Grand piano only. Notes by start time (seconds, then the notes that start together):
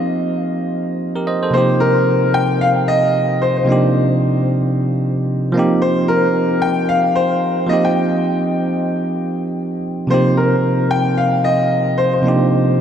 Already playing: D#5
1.54 C5
1.80 A#4
2.34 G5
2.61 F5
2.88 D#5
3.42 C5
3.57 C5
5.82 C5
6.08 A#4
6.62 G5
6.89 F5
7.16 C5
7.69 D#5
7.85 G5
10.11 C5
10.37 A#4
10.91 G5
11.18 F5
11.44 D#5
11.98 C5
12.13 C5